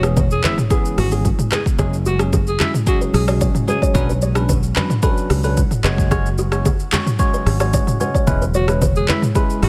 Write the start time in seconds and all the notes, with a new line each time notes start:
Already playing: E1 C#3 G#3 B3 E4, impact
0.03 E3 B3 C#4 G#4, cross-stick, shaker
0.17 B4, kick, low conga, shaker
0.31 G#4, shaker
0.43 E3 B3 C#4 E4 G#4 B4, clap, high conga, low conga
0.58 mid tom, shaker
0.70 E3 B3 C#4 G#4, kick, shaker
0.85 shaker
0.98 G#1 F#4, cross-stick, open hi-hat, high conga, shaker
1.11 E3 B3 C#4 G#4, shaker
1.25 kick, high conga, shaker
1.39 mid tom, shaker
1.52 G#4 B4, cross-stick, clap, high conga, shaker
1.66 kick, shaker
1.79 F#1 F#3 G#3 C#4 F#4 G#4, kick, low conga, shaker
1.93 shaker
2.06 F#4, high conga, shaker
2.19 F#3 G#3 C#4 G#4, cross-stick, shaker
2.33 G#4, kick, low conga, shaker
2.47 G#4, shaker
2.59 F#3 G#3 C#4 E4 G#4, cross-stick, clap, high conga, low conga
2.74 mid tom, shaker
2.86 F#3 G#3 C#4 F#4 G#4, kick, shaker
3.01 B4, shaker
3.14 B1 G#4, cross-stick, open hi-hat, high conga, shaker
3.27 F#3 G#3 C#4 G#4 C#5, cross-stick, shaker
3.41 C#5, kick, high conga, shaker
3.55 mid tom, shaker
3.67 F#3 G#3 C#4 G#4 B4, high conga, shaker
3.82 C#5, kick, shaker
3.94 B1 B2 F#3 B3 C#4 D4 B4 C#5, kick, low conga, shaker
4.09 B4, shaker
4.22 C#5, high conga, shaker
4.35 F#3 C#4 D4 B4, cross-stick, shaker
4.49 B4, kick, low conga, shaker
4.63 shaker
4.75 F#3 C#4 D4 B4, clap, high conga, low conga
4.90 mid tom, shaker
5.03 F#3 C#4 D4 A4 B4, kick, shaker
5.17 shaker
5.30 C#2 F#4, cross-stick, open hi-hat, high conga, shaker
5.44 F#3 C#4 D4 A4 B4, shaker
5.57 kick, high conga, shaker
5.71 mid tom, shaker
5.83 F#1 C#3 F#3 G#3 C#4 F#4 B4 C#5, cross-stick, clap, high conga, shaker
5.98 kick, shaker
6.11 G#3 C#4 F#4 G#4 C#5, kick, low conga, shaker
6.26 shaker
6.38 F#4, high conga, shaker
6.52 G#3 C#4 F#4 C#5, cross-stick, shaker
6.65 G#4, kick, low conga, shaker
6.79 shaker
6.92 G#3 C#4 F#4 C#5, cross-stick, clap, high conga, low conga, shaker
7.06 mid tom, shaker
7.19 G#3 C#4 F#4 C#5, kick, shaker
7.34 B4, shaker
7.46 G#1, cross-stick, open hi-hat, high conga, shaker
7.60 G#3 C#4 F#4 C#5, cross-stick, shaker
7.73 C#5, kick, high conga, shaker
7.87 mid tom, shaker
8.00 G#3 C#4 F#4 B4 C#5, high conga, shaker
8.15 C#5, kick, shaker
8.27 E1 G#3 B3 C#4 E4 B4, kick, low conga, shaker
8.42 B4, shaker
8.54 F#4 C#5, high conga, shaker
8.68 G#3 C#4 E4 B4, cross-stick, shaker
8.82 B4, kick, low conga, shaker
8.95 G#4, shaker
9.08 G#3 C#4 E4 B4, clap, high conga, low conga
9.22 mid tom, shaker
9.35 G#3 C#4 E4 G#4 B4, kick, shaker
9.50 shaker
9.62 G#1 F#4, cross-stick, open hi-hat, high conga, shaker